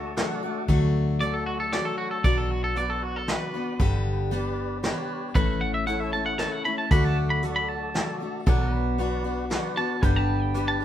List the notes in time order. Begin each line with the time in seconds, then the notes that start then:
Already playing: D2 A3 D4 F#4 A4 D5 F#5 A5
0.16 F#3 A3 D4 F#4 A4 D5 F#5, snare, closed hi-hat
0.43 A3 D4 F#4
0.68 D2 D3 F#3 A3 D4 F#4, kick, closed hi-hat
1.20 F#3 A3 D4 F#4 A4 D5, closed hi-hat
1.34 A4
1.46 F#4
1.60 A4
1.72 F#3 A3 D4 F#4 A4 C#5 D5, snare, closed hi-hat
1.85 A4
1.98 F#4
2.11 A4
2.24 B1 B2 F#3 B3 D4 F#4 D5, kick, closed hi-hat
2.38 A4
2.51 F#4
2.64 A4
2.75 F#3 B3 D4 F#4 B4 D5, closed hi-hat
2.90 A4
3.03 F#4
3.16 A4
3.28 F#3 B3 D4 F#4 B4 D5, snare, closed hi-hat
3.54 B3 D4 F#4
3.79 G1 G2 D3 G3 B3 D4 G4, kick, closed hi-hat
4.31 G3 B3 D4 G4 B4 D5, closed hi-hat
4.83 G3 B3 D4 G4 B4 C#5, snare, closed hi-hat
5.35 A1 A2 E3 A3 C#4 E4 A4 B4, kick, closed hi-hat
5.61 F#5
5.74 E5
5.87 A3 C#4 E4 A4 C#5 F#5, closed hi-hat
6.00 E5
6.13 A3 C#4 E4 A4 A5
6.26 F#5
6.38 A3 C#4 E4 A4 C#5 A5, snare, closed hi-hat
6.52 F#5
6.64 A3 C#4 E4 A4 B5
6.78 A5
6.91 D2 D3 F#3 A3 D4 F#4 A4 D5 F#5 B5, kick, closed hi-hat
7.05 A5
7.30 B5
7.43 F#3 A3 D4 F#4 A4 D5, closed hi-hat
7.56 B5
7.69 A5
7.94 F#3 A3 D4 F#4 A4 D5, snare, closed hi-hat
8.20 A3 D4 F#4
8.46 B1 B2 F#3 B3 D4 F#4 A4 D5 F#5, kick, closed hi-hat
8.72 B4
8.98 F#3 B3 D4 F#4 B4 D5, closed hi-hat
9.24 B3 D4 F#4
9.50 F#3 B3 D4 F#4 B4 D5, snare, closed hi-hat
9.77 B3 D4 F#4 A5
10.02 G1 G2 D3 G3 B3 D4 G4 B4 G5, kick, closed hi-hat
10.16 A5
10.42 G5
10.54 G3 B3 D4 G4 B4 D5, closed hi-hat
10.68 A5
10.80 D4 G4